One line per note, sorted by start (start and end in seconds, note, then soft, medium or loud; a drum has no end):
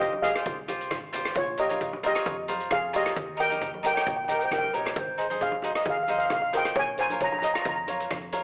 0.00 0.37 F1 loud
0.00 0.12 F4 medium
0.00 0.12 G4 medium
0.00 0.22 G4 medium
0.00 0.12 C5 medium
0.00 0.24 D#5 loud
0.00 kick medium
0.00 closed hi-hat medium
0.13 high conga medium
0.23 0.32 F4 medium
0.23 0.32 G4 medium
0.23 1.10 G#4 medium
0.23 0.32 D#5 medium
0.23 1.10 F5 medium
0.23 closed hi-hat medium
0.23 high conga medium
0.23 low conga medium
0.35 0.56 F4 medium
0.35 0.57 G4 medium
0.35 0.57 C5 medium
0.35 cross-stick medium
0.35 closed hi-hat medium
0.46 0.87 C2 loud
0.46 kick loud
0.46 closed hi-hat medium
0.68 0.97 F4 medium
0.68 0.96 G4 medium
0.68 0.96 C5 medium
0.68 closed hi-hat medium
0.68 high conga medium
0.81 closed hi-hat medium
0.91 1.32 G#1 loud
0.91 kick medium
0.91 cross-stick medium
0.91 closed hi-hat medium
1.12 1.36 F4 loud
1.12 1.36 G4 medium
1.12 1.36 C5 loud
1.12 closed hi-hat medium
1.12 low conga medium
1.25 cross-stick medium
1.25 closed hi-hat medium
1.35 2.16 A#1 loud
1.35 1.48 F4 medium
1.35 1.47 C#5 medium
1.35 kick loud
1.35 closed hi-hat medium
1.57 1.66 F4 medium
1.57 2.02 G4 medium
1.57 1.66 A#4 medium
1.57 1.66 C#5 medium
1.57 2.05 D#5 medium
1.57 closed hi-hat medium
1.69 1.91 F4 medium
1.69 1.91 A#4 medium
1.69 1.91 C#5 medium
1.69 closed hi-hat medium
1.69 high conga medium
1.81 kick medium
1.81 closed hi-hat medium
1.93 high conga medium
2.03 2.11 F4 medium
2.03 2.11 A#4 medium
2.03 2.11 C5 medium
2.03 2.75 D#5 loud
2.03 closed hi-hat medium
2.03 high conga medium
2.03 low conga medium
2.07 2.69 G4 medium
2.14 2.36 F4 medium
2.14 2.36 A#4 medium
2.14 2.36 C#5 medium
2.14 cross-stick medium
2.14 closed hi-hat medium
2.25 2.66 F2 loud
2.25 kick loud
2.25 closed hi-hat medium
2.48 2.76 F4 medium
2.48 2.76 A#4 medium
2.48 2.76 C5 medium
2.48 closed hi-hat medium
2.48 high conga medium
2.60 closed hi-hat medium
2.71 3.11 F2 loud
2.71 2.93 G#4 medium
2.71 2.93 F5 loud
2.71 kick medium
2.71 cross-stick medium
2.71 closed hi-hat medium
2.93 3.16 F4 medium
2.93 3.37 G4 medium
2.93 3.16 A#4 medium
2.93 3.16 C#5 medium
2.93 3.41 D#5 loud
2.93 closed hi-hat medium
2.93 low conga medium
3.06 cross-stick medium
3.06 closed hi-hat medium
3.16 3.97 D#2 loud
3.16 kick loud
3.16 closed hi-hat medium
3.37 3.45 D#4 medium
3.37 3.46 G4 medium
3.37 3.46 A#4 medium
3.37 3.82 A#4 medium
3.37 3.85 G5 loud
3.37 closed hi-hat medium
3.37 low conga medium
3.49 3.71 D#4 medium
3.49 3.70 G4 medium
3.49 3.71 A#4 medium
3.49 closed hi-hat medium
3.49 high conga medium
3.62 kick medium
3.62 closed hi-hat medium
3.74 high conga medium
3.83 3.91 D#4 medium
3.83 3.91 G4 medium
3.83 3.91 A#4 medium
3.83 3.93 A#4 medium
3.83 3.93 G5 loud
3.83 closed hi-hat loud
3.83 high conga medium
3.83 low conga medium
3.94 4.16 D#4 medium
3.94 4.16 G4 medium
3.94 4.16 C#5 medium
3.94 4.00 G5 medium
3.94 cross-stick medium
3.94 closed hi-hat medium
4.02 4.07 G5 medium
4.06 4.47 A#1 loud
4.06 4.15 G5 medium
4.06 kick loud
4.06 closed hi-hat medium
4.16 4.22 G5 medium
4.24 4.56 D#4 medium
4.24 4.56 G4 medium
4.24 4.27 G5 medium
4.24 4.36 G5 medium
4.29 4.56 A#4 medium
4.29 4.44 A#4 medium
4.29 closed hi-hat loud
4.39 4.54 C5 medium
4.39 4.44 G5 medium
4.39 closed hi-hat medium
4.45 4.51 G5 medium
4.51 4.71 C2 medium
4.51 4.75 A#4 medium
4.51 4.57 G5 medium
4.51 kick medium
4.51 cross-stick medium
4.51 closed hi-hat medium
4.51 high conga medium
4.58 4.66 G5 medium
4.63 high conga medium
4.73 4.94 A#1 medium
4.73 4.96 D#4 medium
4.73 4.96 G4 medium
4.73 4.96 A#4 medium
4.73 5.00 C#5 loud
4.73 closed hi-hat medium
4.73 low conga medium
4.85 cross-stick medium
4.85 closed hi-hat medium
4.85 low conga medium
4.95 5.76 G#1 loud
4.95 5.32 C5 loud
4.95 kick loud
4.95 closed hi-hat medium
5.18 5.25 D#4 medium
5.18 5.26 G#4 medium
5.18 5.26 C5 medium
5.18 closed hi-hat medium
5.30 5.50 D#4 medium
5.30 5.51 G#4 medium
5.30 5.51 C5 medium
5.30 closed hi-hat medium
5.30 high conga medium
5.41 5.83 G#4 medium
5.41 5.88 F5 medium
5.41 kick medium
5.41 closed hi-hat medium
5.52 high conga medium
5.62 5.71 D#4 medium
5.62 5.71 G#4 medium
5.62 5.71 C5 medium
5.62 closed hi-hat medium
5.62 high conga medium
5.62 low conga medium
5.75 5.96 D#4 medium
5.75 5.96 G#4 medium
5.75 5.96 D#5 medium
5.75 cross-stick medium
5.75 closed hi-hat medium
5.85 6.26 D#2 medium
5.85 5.95 G#4 medium
5.85 kick loud
5.85 closed hi-hat medium
5.90 5.96 F5 medium
5.97 6.02 F5 medium
6.03 6.09 F5 medium
6.08 6.36 D#4 medium
6.08 6.36 G#4 medium
6.08 6.37 C5 medium
6.08 6.17 F5 medium
6.08 closed hi-hat medium
6.08 high conga medium
6.19 6.25 F5 medium
6.19 closed hi-hat medium
6.26 6.32 F5 medium
6.30 6.71 G#1 loud
6.30 6.40 F5 medium
6.30 kick medium
6.30 cross-stick medium
6.30 closed hi-hat medium
6.42 6.48 F5 medium
6.53 6.76 D#4 medium
6.53 6.76 G#4 medium
6.53 6.75 A#4 medium
6.53 6.76 C5 medium
6.53 closed hi-hat medium
6.53 low conga medium
6.57 6.79 G5 loud
6.65 cross-stick medium
6.65 closed hi-hat medium
6.75 7.56 A#1 loud
6.75 6.98 C#5 medium
6.75 kick loud
6.75 closed hi-hat medium
6.79 6.99 G#5 loud
6.98 7.06 F4 medium
6.98 7.06 A#4 medium
6.98 7.20 C5 medium
6.98 7.06 C#5 medium
6.98 7.23 G#5 loud
6.98 closed hi-hat medium
7.10 7.31 F4 medium
7.10 7.31 A#4 medium
7.10 7.31 C#5 medium
7.10 closed hi-hat medium
7.10 high conga medium
7.20 7.29 C#5 medium
7.20 7.30 A#5 loud
7.20 kick medium
7.20 closed hi-hat medium
7.32 7.38 A#5 medium
7.32 high conga medium
7.39 7.44 A#5 medium
7.39 high conga medium
7.39 low conga medium
7.43 7.51 F4 medium
7.43 7.51 A#4 medium
7.43 7.51 D#5 medium
7.43 7.52 A#5 medium
7.43 closed hi-hat loud
7.54 7.75 F4 medium
7.54 7.76 A#4 medium
7.54 7.76 C#5 medium
7.54 7.60 A#5 medium
7.54 cross-stick medium
7.54 closed hi-hat medium
7.62 8.06 F2 loud
7.62 7.67 A#5 medium
7.62 kick loud
7.62 closed hi-hat medium
7.69 7.75 A#5 medium
7.76 7.82 A#5 medium
7.87 8.16 F4 medium
7.87 8.16 A#4 medium
7.87 8.16 C#5 medium
7.87 closed hi-hat medium
7.87 high conga medium
8.00 closed hi-hat medium
8.10 8.43 F2 loud
8.10 kick medium
8.10 cross-stick medium
8.10 closed hi-hat medium
8.32 8.43 F4 medium
8.32 8.43 A#4 medium
8.32 8.43 C#5 loud
8.32 closed hi-hat medium
8.32 low conga medium